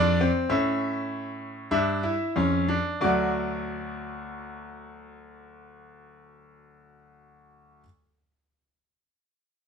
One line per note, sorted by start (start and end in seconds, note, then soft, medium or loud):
0.00 0.27 F2 medium
0.00 0.19 D4 medium
0.00 0.27 D5 medium
0.21 0.49 C4 medium
0.49 1.69 A2 medium
0.49 1.68 C#4 medium
0.49 1.69 E5 medium
1.71 2.11 G2 medium
1.71 2.02 D4 medium
1.71 2.97 E5 medium
2.03 2.35 E4 medium
2.36 2.76 F2 medium
2.36 2.68 C#4 medium
2.68 3.00 D4 medium
3.01 7.80 D2 medium
3.01 7.83 F#3 medium
3.01 7.83 A3 medium
3.01 7.80 F#4 medium
3.01 7.80 D5 medium